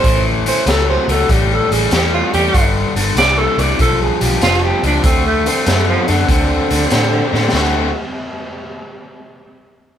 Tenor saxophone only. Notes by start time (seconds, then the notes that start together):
Already playing: C5
0.48 C5
0.69 A4
0.90 C5
1.11 A4
1.31 G4
1.53 A4
1.72 G#4
1.93 G4
2.14 F4
2.34 G4
3.18 D5
3.38 A4
3.59 D5
3.81 A4
4.02 G#4
4.21 G4
4.43 F4
4.64 G4
4.86 D4
5.05 C4
5.26 A3
5.47 C4
5.67 A3
5.88 F3
6.08 D3
7.52 D3